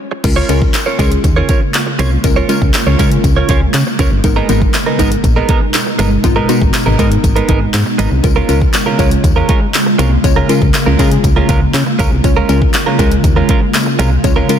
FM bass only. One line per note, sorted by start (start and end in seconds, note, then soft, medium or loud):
0.24 0.43 C#2 loud
0.49 0.68 C#2 loud
0.99 1.18 C#2 medium
1.24 1.43 D#2 loud
1.99 2.18 C2 medium
2.24 2.43 C#2 loud
2.62 2.71 C#2 loud
2.87 2.96 C#2 medium
2.99 3.18 C#3 medium
3.24 3.42 C#2 loud
3.49 3.68 C#2 loud
3.74 3.83 C#3 loud
3.99 4.08 C#2 medium
4.11 4.21 G1 medium
4.24 4.43 G#1 loud
4.49 4.68 G#1 loud
4.99 5.18 G#1 medium
5.24 5.42 A#1 loud
5.99 6.18 G1 medium
6.24 6.42 G#1 loud
6.61 6.71 G#1 loud
6.87 6.96 G#1 loud
6.99 7.17 G#2 loud
7.24 7.42 G#1 loud
7.49 7.68 G#1 loud
7.74 7.83 G#2 loud
7.99 8.08 G#1 loud
8.12 8.21 C2 medium
8.24 8.42 C#2 loud
8.49 8.68 C#2 medium
8.99 9.17 C#2 loud
9.24 9.42 D#2 loud
9.99 10.18 C2 loud
10.24 10.43 C#2 loud
10.62 10.71 C#2 medium
10.87 10.96 C#2 loud
10.99 11.18 C#3 loud
11.24 11.42 C#2 loud
11.49 11.68 C#2 medium
11.74 11.83 C#3 loud
11.99 12.09 C#2 medium
12.12 12.21 C2 medium
12.24 12.43 C#2 loud
12.49 12.68 C#2 loud
12.99 13.18 C#2 medium
13.24 13.42 D#2 loud
13.99 14.18 C2 loud
14.24 14.43 C#2 loud